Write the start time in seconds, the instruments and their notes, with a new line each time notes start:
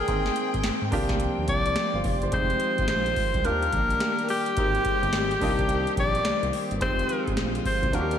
Already playing: string section D#3 G5, grand piano F4
0.00 alto saxophone G#4
0.07 analog synth bass G#1, string section G#3 C4, grand piano A#3 C4 D#4 G5, kick, closed hi-hat
0.26 snare
0.36 closed hi-hat
0.54 analog synth bass G#1, kick, closed hi-hat
0.64 analog synth bass G#2, snare, closed hi-hat
0.81 analog synth bass G#2
0.91 analog synth bass C2, string section F3 A#3, grand piano A#3 D4 F4 G4, kick, open hi-hat
1.09 kick, snare, closed hi-hat
1.20 closed hi-hat
1.38 analog synth bass D#2
1.48 analog synth bass C2, alto saxophone D5, kick, closed hi-hat
1.66 analog synth bass C2, closed hi-hat
1.76 snare, closed hi-hat
1.93 analog synth bass G1, grand piano C5 F5
2.04 analog synth bass F1, grand piano G4 D5, kick, open hi-hat
2.22 analog synth bass G1, grand piano G4 C5, closed hi-hat
2.32 analog synth bass F1, string section D#3 F3 G#3 C4 F4, grand piano G#3 C4 D#4 G4, alto saxophone C5, kick, closed hi-hat
2.50 closed hi-hat
2.60 closed hi-hat
2.78 analog synth bass G#1, kick, closed hi-hat
2.88 analog synth bass A#1, alto saxophone C5, snare, closed hi-hat
3.06 closed hi-hat
3.16 kick, open hi-hat
3.34 analog synth bass C2, kick, closed hi-hat
3.44 analog synth bass D#2, string section G3 A#3 D4 G4, grand piano A#3 D4 F4 G4, alto saxophone A#4, closed hi-hat
3.63 closed hi-hat
3.73 analog synth bass A#1, kick, closed hi-hat
3.90 closed hi-hat
4.00 snare, closed hi-hat
4.19 closed hi-hat
4.29 alto saxophone G4, open hi-hat
4.46 closed hi-hat
4.56 analog synth bass G#1, string section D#3 G#3 C4, grand piano A#3 C4 D#4 G4, kick, closed hi-hat
4.75 closed hi-hat
4.85 kick, closed hi-hat
5.03 analog synth bass G1, closed hi-hat
5.13 analog synth bass G#1, snare, closed hi-hat
5.31 closed hi-hat
5.41 analog synth bass C2, grand piano A#3 D4 D#4 F4, string section A#3, kick, open hi-hat
5.50 grand piano G4
5.59 kick, closed hi-hat
5.69 closed hi-hat
5.87 closed hi-hat
5.97 analog synth bass A#1, alto saxophone D5, kick, closed hi-hat
6.15 closed hi-hat
6.25 analog synth bass C2, snare, closed hi-hat
6.42 analog synth bass C2, closed hi-hat
6.53 open hi-hat
6.71 analog synth bass G1, closed hi-hat
6.81 analog synth bass F1, string section F3 G#3 F4, grand piano G#3 C4 D#4 G4, alto saxophone C5, kick, closed hi-hat
6.99 closed hi-hat
7.09 closed hi-hat
7.27 analog synth bass G#1, kick, closed hi-hat
7.37 analog synth bass A#1, snare, closed hi-hat
7.55 closed hi-hat
7.65 alto saxophone C5, kick, open hi-hat
7.82 analog synth bass C2, kick, closed hi-hat
7.92 analog synth bass D#2, string section D#3 G3 A#3 D4 G4, grand piano A#3 D4 F4 F#4, alto saxophone A#4, closed hi-hat
8.01 grand piano G4
8.11 closed hi-hat